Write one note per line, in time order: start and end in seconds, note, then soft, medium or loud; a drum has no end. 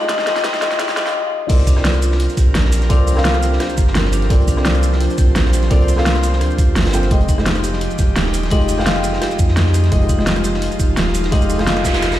0.00 0.09 G#3 medium
0.00 1.11 G#3 medium
0.00 0.09 D#4 loud
0.00 0.09 F4 medium
0.00 1.11 F4 medium
0.00 1.51 F4 medium
0.00 0.02 G4 medium
0.00 1.11 G4 medium
0.00 0.10 G4 medium
0.00 0.02 D#5 loud
0.00 1.11 D#5 medium
0.00 0.10 D#5 medium
0.00 closed hi-hat soft
0.00 riser medium
0.09 0.25 G#3 medium
0.09 0.25 D#4 loud
0.09 0.25 F4 medium
0.09 0.26 G4 medium
0.09 0.26 D#5 loud
0.09 kick loud
0.09 snare medium
0.09 closed hi-hat medium
0.09 closed hi-hat loud
0.18 snare soft
0.18 snare medium
0.26 0.42 G#3 medium
0.26 0.43 D#4 loud
0.26 0.43 F4 medium
0.26 0.43 G4 medium
0.26 0.43 D#5 loud
0.26 snare soft
0.26 snare medium
0.26 closed hi-hat medium
0.36 snare medium
0.36 closed hi-hat medium
0.36 closed hi-hat soft
0.43 0.59 G#3 medium
0.43 0.60 D#4 loud
0.43 0.60 F4 medium
0.43 0.60 G4 medium
0.43 0.61 D#5 loud
0.43 kick loud
0.43 snare loud
0.43 snare medium
0.43 closed hi-hat medium
0.43 closed hi-hat loud
0.53 snare soft
0.53 snare medium
0.53 closed hi-hat soft
0.61 0.77 G#3 medium
0.61 0.78 D#4 loud
0.61 0.77 F4 medium
0.61 0.78 G4 medium
0.61 0.78 D#5 loud
0.61 snare loud
0.61 closed hi-hat medium
0.71 snare medium
0.71 closed hi-hat soft
0.78 0.95 G#3 medium
0.78 0.96 D#4 loud
0.78 0.95 F4 medium
0.78 0.96 G4 medium
0.78 0.96 D#5 loud
0.78 kick medium
0.78 snare loud
0.78 closed hi-hat medium
0.78 closed hi-hat loud
0.88 snare medium
0.88 closed hi-hat medium
0.96 1.13 G#3 loud
0.96 1.13 D#4 loud
0.96 1.13 F4 medium
0.96 1.13 G4 medium
0.96 1.14 D#5 loud
0.96 snare loud
0.96 closed hi-hat medium
0.96 closed hi-hat soft
1.06 snare medium
1.06 closed hi-hat medium
1.49 2.28 C2 medium
1.49 7.07 F3 medium
1.49 1.74 C4 medium
1.49 7.07 C4 medium
1.49 7.07 D4 medium
1.49 1.74 F4 medium
1.49 4.27 A#4 medium
1.49 1.74 A#4 medium
1.49 1.75 D5 loud
1.49 kick loud
1.49 closed hi-hat medium
1.49 crash loud
1.59 closed hi-hat soft
1.67 1.84 D4 loud
1.67 kick medium
1.67 closed hi-hat medium
1.67 shaker medium
1.76 1.85 C4 medium
1.76 1.85 F4 medium
1.76 1.85 A#4 medium
1.76 1.85 D5 medium
1.76 cross-stick soft
1.76 snare soft
1.85 snare loud
1.85 closed hi-hat medium
1.85 closed hi-hat loud
1.93 cross-stick soft
1.93 closed hi-hat soft
2.02 2.18 F4 medium
2.02 closed hi-hat medium
2.02 shaker medium
2.12 snare medium
2.20 closed hi-hat medium
2.29 closed hi-hat soft
2.29 shaker soft
2.37 2.53 C2 medium
2.37 2.54 G4 medium
2.37 kick loud
2.37 closed hi-hat medium
2.37 shaker medium
2.55 2.89 A#1 medium
2.55 snare loud
2.55 closed hi-hat loud
2.55 closed hi-hat medium
2.65 snare soft
2.72 closed hi-hat medium
2.72 open hi-hat medium
2.72 shaker medium
2.82 snare soft
2.82 closed hi-hat soft
2.89 2.98 C2 loud
2.89 3.14 C4 loud
2.89 3.06 D4 loud
2.89 3.15 F4 medium
2.89 3.15 A#4 medium
2.89 3.15 D5 loud
2.89 kick loud
2.89 closed hi-hat medium
2.99 3.59 C2 medium
3.08 closed hi-hat medium
3.08 open hi-hat medium
3.08 shaker medium
3.15 4.28 C4 loud
3.15 4.28 F4 medium
3.15 4.29 A#4 medium
3.15 4.29 F5 loud
3.15 cross-stick soft
3.15 snare medium
3.25 3.42 F4 medium
3.25 snare loud
3.25 closed hi-hat medium
3.26 snare loud
3.34 cross-stick medium
3.34 snare soft
3.34 closed hi-hat soft
3.43 closed hi-hat medium
3.43 shaker medium
3.53 snare medium
3.60 3.70 G4 medium
3.60 cross-stick soft
3.60 snare loud
3.60 closed hi-hat medium
3.69 closed hi-hat soft
3.69 shaker soft
3.78 4.29 G1 loud
3.78 kick loud
3.78 closed hi-hat medium
3.78 shaker medium
3.87 snare soft
3.95 4.11 A#4 medium
3.95 snare loud
3.95 closed hi-hat medium
4.05 snare medium
4.13 4.29 D4 medium
4.13 closed hi-hat medium
4.13 open hi-hat medium
4.13 shaker medium
4.22 snare soft
4.22 closed hi-hat soft
4.29 5.08 C2 loud
4.29 4.55 C4 medium
4.29 4.55 F4 medium
4.29 4.55 A#4 medium
4.29 7.08 C5 medium
4.29 4.55 D5 loud
4.29 kick loud
4.29 closed hi-hat loud
4.29 closed hi-hat medium
4.40 closed hi-hat soft
4.48 4.64 D4 loud
4.48 kick medium
4.48 closed hi-hat medium
4.48 shaker medium
4.57 4.65 C4 medium
4.57 4.66 F4 medium
4.57 4.66 A#4 medium
4.57 4.66 D5 medium
4.57 cross-stick soft
4.57 snare soft
4.65 snare loud
4.65 closed hi-hat medium
4.74 cross-stick soft
4.74 closed hi-hat soft
4.83 4.99 F4 medium
4.83 closed hi-hat medium
4.83 shaker medium
4.92 snare medium
5.01 closed hi-hat medium
5.10 closed hi-hat soft
5.10 shaker soft
5.18 5.34 C2 medium
5.18 5.35 G4 medium
5.18 kick loud
5.18 closed hi-hat medium
5.18 shaker medium
5.35 5.69 A#1 medium
5.35 snare loud
5.35 closed hi-hat medium
5.45 snare medium
5.53 closed hi-hat medium
5.53 open hi-hat medium
5.53 shaker medium
5.62 snare soft
5.62 closed hi-hat soft
5.70 5.79 C2 medium
5.70 5.95 C4 medium
5.70 5.87 D4 loud
5.70 5.95 F4 medium
5.70 5.96 A#4 medium
5.70 5.96 D5 loud
5.70 kick loud
5.70 closed hi-hat medium
5.80 6.42 C2 medium
5.80 closed hi-hat soft
5.88 closed hi-hat medium
5.88 open hi-hat medium
5.88 shaker medium
5.96 6.91 C4 loud
5.96 6.92 F4 medium
5.96 6.92 A#4 medium
5.96 6.93 F5 loud
5.96 cross-stick soft
5.96 snare medium
6.05 6.22 F4 medium
6.05 snare loud
6.05 closed hi-hat medium
6.14 cross-stick soft
6.14 snare soft
6.14 closed hi-hat soft
6.23 closed hi-hat medium
6.23 shaker medium
6.32 snare medium
6.41 6.75 D2 loud
6.41 6.51 G4 medium
6.41 cross-stick soft
6.41 closed hi-hat medium
6.51 shaker soft
6.58 6.75 F4 medium
6.58 kick loud
6.58 closed hi-hat medium
6.58 shaker medium
6.76 7.10 G1 loud
6.76 snare medium
6.76 snare loud
6.76 closed hi-hat medium
6.80 snare medium
6.80 closed hi-hat medium
6.85 snare loud
6.85 closed hi-hat medium
6.89 snare medium
6.89 closed hi-hat medium
6.93 7.09 C4 medium
6.93 7.09 F4 medium
6.93 7.09 A#4 medium
6.93 7.10 G5 medium
6.93 closed hi-hat medium
6.93 open hi-hat medium
6.93 shaker medium
7.03 snare soft
7.03 closed hi-hat soft
7.11 7.89 F1 loud
7.11 12.19 F3 medium
7.11 7.36 G#3 medium
7.11 12.19 G#3 medium
7.11 12.19 D#4 medium
7.11 7.36 F4 medium
7.11 9.89 G4 medium
7.11 7.36 G4 medium
7.11 7.36 D#5 loud
7.11 kick loud
7.11 closed hi-hat medium
7.21 closed hi-hat soft
7.29 7.45 D#4 loud
7.29 kick medium
7.29 closed hi-hat medium
7.29 shaker medium
7.37 7.46 G#3 medium
7.37 7.46 F4 medium
7.37 7.46 G4 medium
7.37 7.47 D#5 medium
7.37 cross-stick soft
7.37 snare soft
7.46 snare loud
7.46 closed hi-hat medium
7.55 cross-stick soft
7.55 closed hi-hat soft
7.64 7.80 G4 loud
7.64 closed hi-hat medium
7.64 shaker medium
7.73 snare soft
7.81 closed hi-hat medium
7.90 closed hi-hat soft
7.90 shaker soft
7.99 8.15 F1 medium
7.99 8.15 G4 medium
7.99 kick loud
7.99 closed hi-hat medium
7.99 shaker medium
8.16 8.50 D#1 medium
8.16 snare loud
8.16 closed hi-hat medium
8.26 snare medium
8.34 closed hi-hat medium
8.34 open hi-hat medium
8.34 shaker medium
8.43 snare soft
8.43 closed hi-hat soft
8.50 8.60 F1 medium
8.50 8.75 G#3 loud
8.50 8.67 D#4 loud
8.50 8.76 F4 medium
8.50 8.76 G4 medium
8.50 8.77 D#5 loud
8.50 kick loud
8.50 closed hi-hat medium
8.61 9.20 F1 medium
8.61 closed hi-hat soft
8.69 closed hi-hat medium
8.69 open hi-hat medium
8.69 shaker medium
8.77 9.89 G#3 loud
8.77 9.90 F4 medium
8.77 9.91 F5 loud
8.77 9.90 G5 medium
8.77 cross-stick soft
8.77 snare medium
8.86 9.03 F4 medium
8.86 snare loud
8.86 closed hi-hat medium
8.96 cross-stick soft
8.96 snare soft
8.96 closed hi-hat soft
9.03 closed hi-hat medium
9.03 shaker medium
9.13 snare medium
9.22 9.32 G4 medium
9.22 cross-stick soft
9.22 snare loud
9.22 closed hi-hat medium
9.30 closed hi-hat soft
9.30 shaker soft
9.39 9.90 F2 loud
9.39 kick loud
9.39 closed hi-hat medium
9.39 shaker medium
9.48 snare soft
9.57 9.73 G#4 medium
9.57 snare loud
9.57 closed hi-hat medium
9.66 snare medium
9.74 9.90 D#4 medium
9.74 closed hi-hat medium
9.74 open hi-hat medium
9.74 shaker medium
9.84 snare soft
9.84 closed hi-hat soft
9.91 10.70 F1 loud
9.91 10.16 G#3 medium
9.91 10.16 F4 medium
9.91 12.19 F4 medium
9.91 10.17 G4 medium
9.91 10.17 D#5 loud
9.91 kick loud
9.91 closed hi-hat medium
10.02 closed hi-hat soft
10.09 10.26 D#4 loud
10.09 kick medium
10.09 closed hi-hat medium
10.09 shaker medium
10.18 10.27 G#3 medium
10.18 10.27 F4 medium
10.18 10.27 G4 medium
10.18 10.27 D#5 medium
10.18 cross-stick soft
10.18 snare soft
10.26 snare loud
10.26 closed hi-hat loud
10.26 closed hi-hat medium
10.36 cross-stick soft
10.36 closed hi-hat soft
10.44 10.60 G4 loud
10.44 closed hi-hat medium
10.44 shaker medium
10.54 snare medium
10.62 closed hi-hat loud
10.62 closed hi-hat medium
10.71 closed hi-hat soft
10.71 shaker soft
10.80 10.95 F1 medium
10.80 10.96 G4 medium
10.80 kick loud
10.80 closed hi-hat medium
10.80 shaker medium
10.97 11.31 D#1 medium
10.97 snare loud
10.97 closed hi-hat loud
10.97 closed hi-hat medium
11.08 snare medium
11.15 closed hi-hat medium
11.15 open hi-hat medium
11.15 shaker medium
11.24 snare soft
11.24 closed hi-hat soft
11.31 11.41 F1 loud
11.31 11.56 G#3 medium
11.31 11.48 D#4 loud
11.31 11.57 F4 medium
11.31 11.57 G4 medium
11.31 11.57 D#5 loud
11.31 kick loud
11.31 closed hi-hat medium
11.31 noise sweep medium
11.42 12.19 F1 medium
11.42 closed hi-hat soft
11.42 shaker soft
11.50 closed hi-hat medium
11.50 open hi-hat medium
11.50 shaker medium
11.58 12.19 G#3 loud
11.58 12.19 F4 medium
11.58 12.19 G4 medium
11.58 12.19 F5 loud
11.58 cross-stick soft
11.58 snare soft
11.58 closed hi-hat soft
11.67 11.84 F4 medium
11.67 snare loud
11.67 closed hi-hat medium
11.77 cross-stick soft
11.77 snare soft
11.77 closed hi-hat soft
11.84 kick medium
11.84 snare loud
11.84 closed hi-hat medium
11.84 shaker medium
11.94 snare loud
11.94 closed hi-hat medium
11.94 closed hi-hat soft
12.02 12.12 G4 medium
12.02 cross-stick soft
12.02 snare loud
12.02 closed hi-hat medium
12.02 closed hi-hat loud
12.12 snare loud
12.12 closed hi-hat medium
12.12 shaker soft